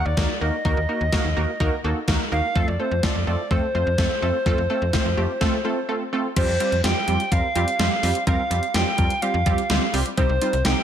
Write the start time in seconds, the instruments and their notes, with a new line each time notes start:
0.05 fm bass D#2, recorder D5
0.17 fm bass D#2, analog polysynth A#3 D#4 F#4 A#4, kick, snare
0.41 fm bass D#2, analog polysynth A#3 D#4 F#4 A#4, recorder D#5
0.65 fm bass D#2, analog polysynth A#3 D#4 F#4 A#4, kick
0.77 fm bass D#2
0.89 analog polysynth A#3 D#4 F#4 A#4
1.01 fm bass D#2
1.12 analog polysynth A#3 D#4 F#4 A#4, kick, snare
1.25 fm bass D#2
1.37 fm bass D#2, analog polysynth A#3 D#4 F#4 A#4
1.60 fm bass D#2, analog polysynth A#3 D#4 F#4 A#4, kick
1.84 fm bass D#2, analog polysynth A#3 D#4 F#4 A4
2.08 fm bass D#2, analog polysynth A#3 D#4 F#4 A#4, kick, snare
2.32 fm bass D#2, analog polysynth A#3 D#4 F#4 A#4, recorder F5
2.55 fm bass F2, analog polysynth A3 C4 F4 A4, kick
2.68 fm bass F2, recorder D5
2.79 analog polysynth A3 C4 F4 A4, recorder C5
2.91 fm bass F2
3.03 analog polysynth A3 C4 F4 A4, recorder D5, kick, snare
3.15 fm bass F2
3.27 fm bass F2, analog polysynth A3 C4 F4 A4, recorder D5
3.51 fm bass F2, analog polysynth A3 C4 F4 A4, recorder C5, kick
3.75 fm bass F2, analog polysynth A3 C4 F4 C5
3.87 fm bass F2
3.98 fm bass F2, analog polysynth A3 C4 F4 A4, kick, snare
4.22 fm bass F2, analog polysynth A3 C4 F4 A4
4.46 fm bass F2, analog polysynth A3 C4 F4 A4, kick
4.58 fm bass F2
4.70 analog polysynth A3 C4 F4 A4
4.82 fm bass F2
4.93 analog polysynth A3 C4 F4 C5, kick, snare
5.06 fm bass F2
5.17 fm bass F2, analog polysynth A3 C4 F4 G4
5.41 analog polysynth A3 C4 F4 A4, kick, snare
5.65 analog polysynth A3 C4 F4 A4
5.89 analog polysynth A3 C4 F4 A4
6.13 analog polysynth A3 C4 F4 A4
6.36 fm bass F2, analog polysynth G3 C4 F4 G4, recorder C5, kick, closed hi-hat, crash
6.48 fm bass F2
6.60 analog polysynth G3 C4 F4 G4, closed hi-hat
6.72 fm bass F2, closed hi-hat
6.84 fm bass F2, analog polysynth G3 C4 F4 G4, recorder G5, snare, closed hi-hat
7.08 fm bass F2, analog polysynth G3 C4 F4 G4, closed hi-hat
7.20 closed hi-hat
7.32 fm bass F2, analog polysynth G3 C4 F4 A#4, recorder F5, kick, closed hi-hat
7.55 fm bass F2, analog polysynth G3 C4 F4 G4, closed hi-hat
7.68 closed hi-hat
7.79 fm bass F2, analog polysynth G3 C4 F4 G4, snare, closed hi-hat
8.03 fm bass F2, analog polysynth G3 C4 F4 G4, open hi-hat
8.15 closed hi-hat
8.27 fm bass F2, analog polysynth G3 C4 F4 A#4, recorder F5, kick, closed hi-hat
8.51 fm bass F2, analog polysynth G3 C4 F4 G4, closed hi-hat
8.63 closed hi-hat
8.74 fm bass F2, analog polysynth G3 C4 F4 G4, recorder G5, snare, closed hi-hat
8.98 fm bass F2, analog polysynth G3 C4 F4 A#4, kick, closed hi-hat
9.10 closed hi-hat
9.22 analog polysynth G3 C4 F4 G4, recorder F5, closed hi-hat
9.34 fm bass F2
9.46 fm bass F2, analog polysynth G3 C4 F4 G4, kick, closed hi-hat
9.58 closed hi-hat
9.70 fm bass D2, analog polysynth G3 C4 F4 G4, snare, closed hi-hat
9.93 fm bass C2, analog polysynth G3 C4 F4 G4, open hi-hat
10.06 closed hi-hat
10.17 fm bass C2, analog polysynth G3 C4 D#4 G4, recorder C5, kick, closed hi-hat
10.29 fm bass C2
10.42 analog polysynth G3 C4 D#4 F4, closed hi-hat
10.53 fm bass C2, closed hi-hat
10.65 fm bass C2, analog polysynth G3 C4 D#4 G4, recorder G5, snare, closed hi-hat